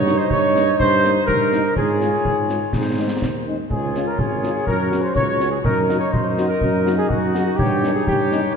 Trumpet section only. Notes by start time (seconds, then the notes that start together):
Already playing: C#5
0.18 C5
0.29 C#5
0.79 C5
1.26 A#4
1.77 G#4
3.70 G#4
4.07 A#4
4.19 G#4
4.67 A#4
5.02 C5
5.14 C#5
5.51 G#4
5.64 A#4
5.99 C#5
6.12 C5
6.48 A#4
6.97 G#4
7.08 F#4
7.56 G4
7.94 G#4
8.07 G4